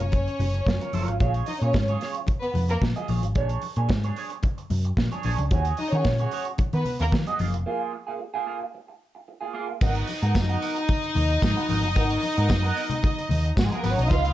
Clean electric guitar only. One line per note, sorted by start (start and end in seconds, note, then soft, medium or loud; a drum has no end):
0.00 muted clean electric guitar stroke soft
0.13 muted clean electric guitar stroke soft
0.27 muted clean electric guitar stroke soft
0.54 muted clean electric guitar stroke soft
0.66 muted clean electric guitar stroke soft
0.81 0.92 F4 soft
0.81 0.93 A#4 soft
0.81 0.94 C#5 medium
0.94 1.14 F4 medium
0.94 1.07 A#4 medium
0.94 1.07 C#5 medium
1.08 muted clean electric guitar stroke soft
1.20 1.45 F4 medium
1.20 1.46 G#4 medium
1.20 1.46 C#5 medium
1.47 muted clean electric guitar stroke soft
1.62 1.74 F4 soft
1.62 1.74 G#4 medium
1.62 1.75 C#5 medium
1.75 muted clean electric guitar stroke soft
1.89 2.00 F4 medium
1.89 2.01 G#4 medium
1.89 2.02 C#5 medium
2.02 2.16 F4 medium
2.02 2.16 G#4 medium
2.02 2.15 C#5 medium
2.16 muted clean electric guitar stroke soft
2.28 muted clean electric guitar stroke soft
2.42 muted clean electric guitar stroke soft
2.69 muted clean electric guitar stroke soft
2.82 muted clean electric guitar stroke soft
2.96 3.07 F4 medium
2.96 3.08 G#4 medium
2.96 3.09 D#5 medium
3.09 3.24 F4 medium
3.09 3.23 G#4 medium
3.09 3.22 C#5 medium
3.23 muted clean electric guitar stroke medium
3.35 3.61 D4 medium
3.35 3.61 G#4 medium
3.35 3.61 C#5 loud
3.63 muted clean electric guitar stroke soft
3.77 3.89 D4 medium
3.77 3.89 G#4 medium
3.77 3.90 C#5 medium
3.90 muted clean electric guitar stroke soft
4.04 4.16 D4 medium
4.04 4.17 G#4 medium
4.04 4.17 C#5 medium
4.17 4.32 D4 medium
4.17 4.31 G#4 medium
4.17 4.30 C#5 medium
4.31 muted clean electric guitar stroke soft
4.44 muted clean electric guitar stroke soft
4.58 muted clean electric guitar stroke soft
4.85 muted clean electric guitar stroke soft
4.97 muted clean electric guitar stroke soft
5.12 5.23 D4 medium
5.12 5.24 G#4 medium
5.12 5.24 C#5 medium
5.24 5.43 D4 medium
5.24 5.39 G#4 medium
5.24 5.38 C#5 medium
5.39 muted clean electric guitar stroke soft
5.52 5.76 F#4 medium
5.52 5.77 G#4 medium
5.52 5.77 C#5 medium
5.79 muted clean electric guitar stroke soft
5.93 6.05 F#4 medium
5.93 6.06 G#4 medium
5.93 6.06 C#5 medium
6.06 muted clean electric guitar stroke soft
6.20 6.31 F#4 medium
6.20 6.32 G#4 medium
6.20 6.32 C#5 medium
6.33 6.47 F#4 medium
6.33 6.46 G#4 medium
6.33 6.45 C#5 medium
6.47 muted clean electric guitar stroke soft
6.60 muted clean electric guitar stroke soft
6.73 muted clean electric guitar stroke soft
7.00 muted clean electric guitar stroke soft
7.13 muted clean electric guitar stroke soft
7.27 7.40 F#4 medium
7.27 7.40 G#4 medium
7.27 7.44 D#5 medium
7.39 7.54 A#3 medium
7.39 7.54 F4 medium
7.39 7.53 G#4 medium
7.54 muted clean electric guitar stroke soft
7.66 7.91 A#3 medium
7.66 7.92 F4 medium
7.66 7.92 G#4 medium
7.93 muted clean electric guitar stroke soft
8.07 8.18 A#3 soft
8.07 8.19 F4 medium
8.07 8.20 G#4 medium
8.20 muted clean electric guitar stroke soft
8.34 8.45 A#3 medium
8.34 8.46 F4 medium
8.34 8.47 G#4 loud
8.46 8.62 A#3 medium
8.46 8.61 F4 medium
8.46 8.60 G#4 medium
8.61 muted clean electric guitar stroke soft
8.74 muted clean electric guitar stroke soft
8.88 muted clean electric guitar stroke soft
9.15 muted clean electric guitar stroke soft
9.28 muted clean electric guitar stroke soft
9.41 9.52 A#3 medium
9.41 9.53 F4 medium
9.41 9.54 G#4 medium
9.53 9.72 A#3 medium
9.53 9.68 F4 medium
9.53 9.67 G#4 medium
9.69 muted clean electric guitar stroke soft
9.81 10.06 B3 medium
9.81 10.07 F#4 loud
9.81 10.07 A#4 loud
10.08 muted clean electric guitar stroke soft
10.22 10.34 B3 medium
10.22 10.34 F#4 medium
10.22 10.35 A#4 medium
10.35 muted clean electric guitar stroke medium
10.49 10.61 B3 medium
10.49 10.61 F#4 medium
10.49 10.62 A#4 medium
10.62 10.77 B3 medium
10.62 10.76 F#4 medium
10.62 10.75 A#4 medium
10.76 muted clean electric guitar stroke soft
10.88 muted clean electric guitar stroke soft
11.03 muted clean electric guitar stroke soft
11.30 muted clean electric guitar stroke soft
11.43 muted clean electric guitar stroke soft
11.56 11.68 B3 medium
11.56 11.68 F#4 medium
11.56 11.70 B4 medium
11.69 11.84 B3 medium
11.69 11.83 F#4 medium
11.69 11.82 A#4 medium
11.83 muted clean electric guitar stroke medium
11.96 12.21 B3 medium
11.96 12.21 F#4 medium
11.96 12.21 A#4 medium
12.23 muted clean electric guitar stroke soft
12.37 12.48 B3 medium
12.37 12.48 F#4 medium
12.37 12.49 A#4 medium
12.49 muted clean electric guitar stroke medium
12.63 12.74 B3 medium
12.63 12.75 F#4 medium
12.63 12.76 A#4 loud
12.76 12.91 B3 medium
12.76 12.90 F#4 medium
12.76 12.90 A#4 medium
12.91 muted clean electric guitar stroke soft
13.03 muted clean electric guitar stroke soft
13.18 muted clean electric guitar stroke soft
13.45 muted clean electric guitar stroke soft
13.57 muted clean electric guitar stroke soft
13.71 13.83 B3 medium
13.71 13.84 F#4 medium
13.71 13.84 A#4 medium
13.84 14.02 B3 medium
13.84 13.98 F#4 medium
13.84 13.97 A#4 medium
13.98 muted clean electric guitar stroke medium
14.11 14.33 D#4 medium
14.11 14.33 F4 loud
14.11 14.33 B4 loud